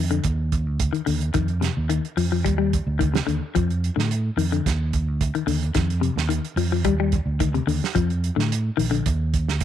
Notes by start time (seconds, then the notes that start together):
Already playing: F2
0.11 D3, closed hi-hat
0.24 D#2, kick, closed hi-hat
0.52 kick, closed hi-hat
0.66 D2
0.80 kick, closed hi-hat
0.93 D#3, closed hi-hat
1.06 D#2 D3, open hi-hat
1.21 closed hi-hat
1.34 F2 D#3, kick, closed hi-hat
1.48 closed hi-hat
1.61 C3, snare, closed hi-hat
1.77 D#2
1.89 D#3, closed hi-hat
2.05 closed hi-hat
2.17 F2 F3, open hi-hat
2.32 F3
2.45 D#2 G3, kick, closed hi-hat
2.58 G3
2.73 kick, closed hi-hat
2.87 D2
2.99 D#3, kick, closed hi-hat
3.14 C3, snare, closed hi-hat
3.27 D#2 D3, closed hi-hat
3.55 F2 F3, kick, closed hi-hat
3.70 closed hi-hat
3.84 closed hi-hat
3.96 A2 D3, snare
4.11 closed hi-hat
4.37 F2 D#3, open hi-hat
4.52 D3, closed hi-hat
4.66 D#2, kick, snare, closed hi-hat
4.93 kick, closed hi-hat
5.08 D2
5.21 kick, closed hi-hat
5.35 D#3, closed hi-hat
5.47 D#2 D3, open hi-hat
5.63 closed hi-hat
5.74 F2 D#3, kick, snare, closed hi-hat
5.90 closed hi-hat
6.01 C3, closed hi-hat
6.16 D#2, snare
6.29 D#3, closed hi-hat
6.45 closed hi-hat
6.56 F2 F3, open hi-hat
6.72 F3
6.85 D#2 G3, kick, closed hi-hat
7.00 G3
7.12 kick, closed hi-hat
7.26 D2
7.40 D#3, kick, closed hi-hat
7.54 C3, closed hi-hat
7.67 D#2 D3, open hi-hat
7.84 snare
7.95 F2 F3, kick, closed hi-hat
8.10 closed hi-hat
8.24 closed hi-hat
8.36 A2 D3, snare
8.52 closed hi-hat
8.77 A#1 D#3, open hi-hat
8.91 D3, closed hi-hat
9.06 D#2, kick, closed hi-hat
9.34 kick, closed hi-hat
9.48 D2, snare
9.60 closed hi-hat